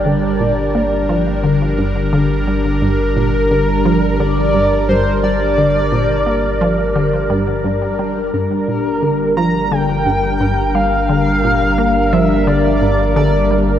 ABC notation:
X:1
M:4/4
L:1/16
Q:1/4=87
K:Gm
V:1 name="Analog synth lead"
d8- d2 z6 | B8 d4 c2 d2- | d12 z4 | B6 b2 g6 f2- |
f6 =e2 d4 d3 z |]
V:2 name="Synth texture"
z16 | z16 | z16 | [B,B]16- |
[B,B]16 |]
V:3 name="Analog synth pad"
[G,DB]16- | [G,DB]16- | [G,DB]16 | [G,DB]16- |
[G,DB]16 |]
V:4 name="Synth arpeggio sound" clef=bass
D,2 B,,2 B,2 F,2 D,2 G,,2 D,2 G,2 | G,,2 B,,2 D,2 F,2 D,2 G,,2 G,,2 G,2 | D,2 B,,2 B,2 F,2 D,2 G,,2 G,,2 G,2 | G,,2 B,,2 D,2 F,2 D,2 G,,2 G,,2 G,2 |
D,2 B,,2 B,2 F,2 D,2 G,,2 D,2 G,2 |]
V:5 name="Sub bass" clef=bass
G,,,16- | G,,,16- | G,,,16 | G,,,16- |
G,,,16 |]